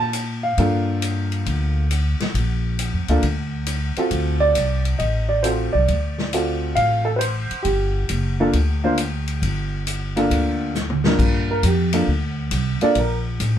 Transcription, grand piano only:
0.00 A5
0.43 F5
0.58 A#3 D4 F4 A4
3.09 A#3 D4 F4 A4
3.97 C4 F4 F#4 A4
4.40 D5
4.99 D#5
5.29 D5
5.43 C4 F4 F#4 A4 C5
5.73 D5
6.34 C4 F4 F#4 A4
6.75 F5
7.05 A4
7.16 B4 C5
7.63 G4
8.40 A#3 D4 F4 A4
8.84 A#3 D4 F4 C5
10.16 A#3 D4 F4 A4
11.05 G2 A#3 D4 F4 A#4
11.51 A#4
11.66 G4
11.93 A#3 D4 F4 A4
12.82 A#3 D4 F4 A4 D5
12.99 A#4

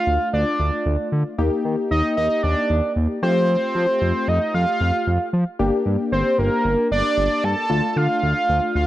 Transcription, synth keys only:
Already playing: A3 D4 F4
1.38 A#3 D#4 G4
3.23 A3 F4 G4
5.59 A#3 D4 G4
7.70 A3 D4 F4

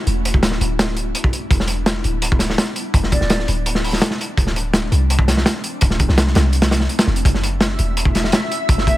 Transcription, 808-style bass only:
0.07 E1
0.34 D1
0.61 D1
1.51 E1
2.04 D1
2.94 E1
3.21 D1
3.48 D1
4.37 D1
4.92 C2
5.82 D1
6.09 C2
6.35 C2
7.07 F1
7.25 F#1
7.79 E1
8.69 F#1

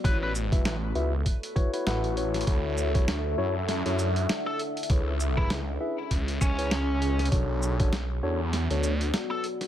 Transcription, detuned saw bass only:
0.04 A1
0.65 A1
0.95 C#2
1.86 A1
2.47 D2
2.88 C#2
3.08 D2
3.38 F#2
3.86 F#2
4.90 C#2
5.50 C#2
6.11 C#2
6.41 C#2
7.32 B1
7.73 A#1
7.93 B1
8.23 E2
8.70 D2

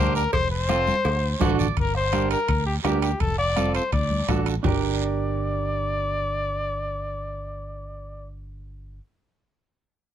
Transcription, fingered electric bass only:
Already playing: D2
0.33 F1
1.05 D2
1.41 A1
1.77 G1
2.49 D2
2.85 D2
3.21 F1
3.93 D2
4.28 A1
4.65 G1

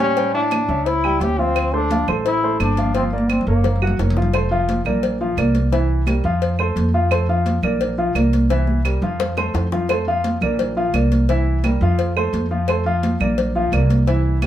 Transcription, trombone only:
0.00 C#4
0.34 D4
0.87 E4
1.21 G4
1.39 C4
1.74 D4
2.26 E4
2.61 D4
2.95 C4
3.13 A#3
3.30 C4
3.48 A#3

